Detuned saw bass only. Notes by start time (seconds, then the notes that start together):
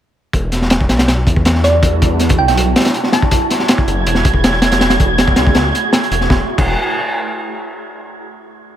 0.33 E1
0.89 B1
1.27 E2
2.38 B1
3.88 F#1
4.06 E1
5.37 C#2
5.55 C#2
6.11 E1
6.30 E1
6.58 E1